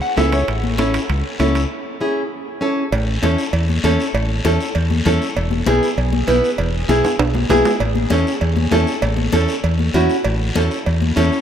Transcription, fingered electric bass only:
0.17 C#2
0.48 A1
1.09 C#2
1.40 C#2
2.92 A1
3.23 E2
3.53 E2
3.84 E2
4.14 A1
4.45 E2
4.75 E2
5.06 E2
5.36 E1
5.67 B1
5.97 B1
6.28 B1
6.58 E1
6.89 B1
7.19 B1
7.50 B1
7.80 A1
8.11 E2
8.41 E2
8.72 E2
9.03 A1
9.33 E2
9.64 E2
9.94 E2
10.25 A1
10.56 E2
10.87 E2
11.17 E2

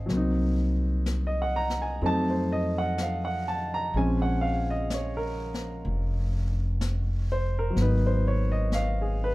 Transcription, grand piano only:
Already playing: G#3 C4 C#4 D#4 C5 C#5 D#5 F5 G#5
0.06 F#3 A#3
0.13 C4 D#4
1.27 D#5
1.42 F#5
1.56 A#5
1.82 G#5
2.02 F#3 A3 C4 D#4
2.06 A5
2.30 C5
2.52 D#5
2.78 F#5
3.02 F5
3.25 F#5
3.48 A5
3.74 A#5
3.95 F3 G#3 C4 C#4 G#5
4.22 F#5
4.41 F5
4.70 D#5
4.94 C#5
5.17 A#4
7.32 C5
7.59 A#4
7.70 F#3 A#3
7.78 B3 D#4 B4
8.07 C5
8.28 C#5
8.52 D#5
8.74 F5
9.01 G#4
9.24 B4

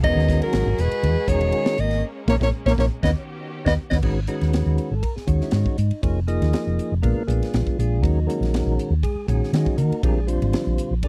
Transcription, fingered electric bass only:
0.03 E1
0.16 D#2
0.41 muted fingered electric bass stroke
0.53 G#1
0.66 G#1
0.78 E1
1.03 E2
1.17 muted fingered electric bass stroke
1.28 E1
1.78 G#1
2.28 A#1
2.41 A#1
2.66 A#1
2.78 A#1
3.03 D#2
3.66 D#2
3.91 D#2
4.03 G#1
4.42 D#2
4.66 D#2
4.91 G#1
5.17 muted fingered electric bass stroke
5.27 D#2
5.53 G#2
5.66 muted fingered electric bass stroke
5.78 G#2
5.92 muted fingered electric bass stroke
6.03 F1
6.42 D#2
6.67 F1
6.92 F1
7.04 A#1
7.28 A#1
7.54 A#1
7.79 A#1
8.03 D#2
8.40 A#1
8.66 A#1
8.90 D#2
9.15 muted fingered electric bass stroke
9.28 A#1
9.53 D#3
9.67 muted fingered electric bass stroke
9.78 D#3
9.91 muted fingered electric bass stroke
10.03 A#1
10.42 G#1
10.67 A#1
10.91 A#1

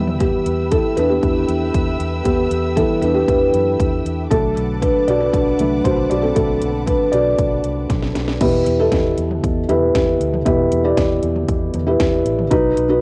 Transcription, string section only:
Already playing: B4 E5 G5 E6
4.31 B4 F#5 A5 D6

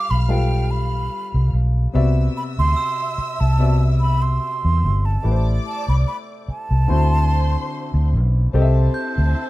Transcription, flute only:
Already playing: D6
0.11 B5
0.30 G5
0.71 B5
2.37 B5
2.59 C6
3.40 A5
4.01 B5
4.22 C6
5.05 A5
5.67 A5
5.89 B5
6.08 B5
6.50 A5

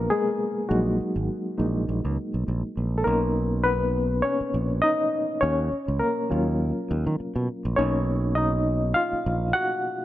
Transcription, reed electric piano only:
Already playing: F#3 A#3 B3 C#4 D#4 A#4 B4
0.10 G#3 G#4
0.69 F#3 G#3 A#3 D#4 F#4
1.58 G#3 A#3 D#4
2.98 A4
3.04 A#3 C#4 D#4 A#4
3.64 B3 B4
4.22 C#4 C#5
4.82 D#4 D#5
5.41 C#4 C#5
5.99 A#3 A#4
6.30 F#3 C#4 F4
7.76 A#3 C#4 D#4 C#5
8.35 D#4 D#5
8.94 F4 F5
9.53 F#4 F#5

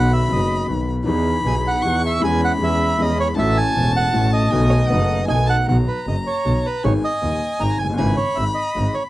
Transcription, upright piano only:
Already playing: B1 B2 D#3 F#3 B3 F#4
0.27 F#1 F#2 D#3 F#3 B3 F#4
0.66 B1 B2 D#3 F#3 B3
0.71 F#4
1.05 E2 E3 B3 D#4 G#4
1.44 B1 B2 E3 B3 D#4
1.48 G#4
1.82 E2 E3 B3 D#4 G#4
2.20 E2 E3 G#3 C#4 G#4
2.58 E2 E3 G#3 C#4 G#4
2.96 E2 E3 G#3 C#4
3.01 G#4
3.35 A1 A2 E3 A3 C#4 F#4
3.74 E1 E2 E3 A3 C#4 F#4
4.12 A1 A2 E3 A3 C#4
4.16 F#4
4.50 B1 B2 D#3 A3 B3
4.54 F#4
4.89 F#1 F#2 D#3 A3 B3
4.93 F#4
5.28 B1 B2 D#3 A3 B3 F#4
5.68 B1 B2 D#3 F#3 B3 F#4
6.07 F#1 F#2
6.45 B1 B2
6.84 G#1 G#2 D#3 G#3 B3 G#4
7.23 D#1 D#2
7.59 G#1 G#2
7.83 F1
7.90 F#1 G1
7.98 G#1 G#2 C#3 G#3 B3 E4
8.36 G#1 G#2
8.76 G#1 G#2

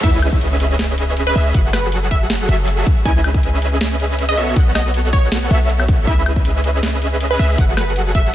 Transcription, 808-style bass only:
0.04 C#2
1.36 C#2
1.54 F#1
2.49 F#1
3.05 C#2
4.37 B1
4.56 B1
5.51 B1
6.07 C#2
7.39 C#2
7.58 F#1

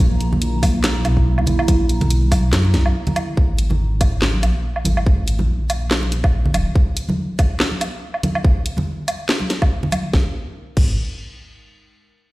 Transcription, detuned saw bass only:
0.00 A#1
1.05 B1
1.47 A#1
2.01 B1
2.53 F#2
2.74 B1
3.37 G#1
4.43 A#1
4.85 G#1
5.40 A#1
6.54 D#1
10.13 G#1
10.77 G#1

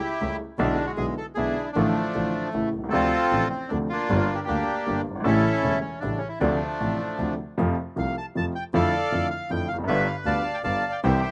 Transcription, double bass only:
0.21 C#2
0.59 B1
0.98 B1
1.37 B1
1.76 A1
2.15 A1
2.54 A1
2.74 C2
2.93 D2
3.31 A1
3.71 D2
4.10 G1
4.49 D2
4.88 G1
5.07 G1
5.24 A1
5.64 E1
6.04 A1
6.42 D2
6.81 A1
7.20 D2
7.59 F2
7.98 C2
8.37 F2
8.74 F2
9.12 F2
9.50 F2
9.69 F1
9.87 G1
10.25 D2
10.65 G1
11.04 C2

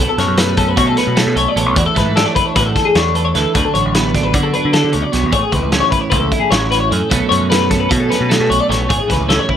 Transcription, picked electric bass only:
0.18 F#2
0.28 F#2
0.78 B2
1.07 B2
1.27 B2
1.36 B1
1.56 A1
1.66 B1
1.77 E2
1.97 G#2
2.06 G#2
2.56 A2
2.95 E2
3.35 D2
3.55 D2
3.75 A1
3.85 A1
4.35 D3
4.65 D3
4.85 D3
4.94 D2
5.14 B1
5.23 E2
5.33 A1
5.53 C#2
5.62 C#2
6.12 C#2
6.52 A1
6.92 F#2
7.12 B1
7.31 F#2
7.41 F#2
7.91 B2
8.21 B2
8.40 B2
8.50 B1
8.69 A1
8.80 B1
8.91 A1
9.10 C#2
9.20 C#2

